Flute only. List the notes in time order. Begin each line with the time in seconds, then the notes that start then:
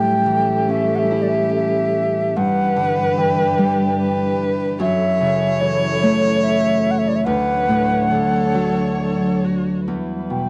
Already playing: G5
0.71 E5
0.95 E5 F#5
1.22 D5
1.29 E5
1.55 E5
2.37 F#5
3.18 G5
4.81 E5
5.61 C#5
6.43 E5
6.91 F#5
6.98 E5
7.08 D5
7.16 E5
7.25 F#5
10.31 G5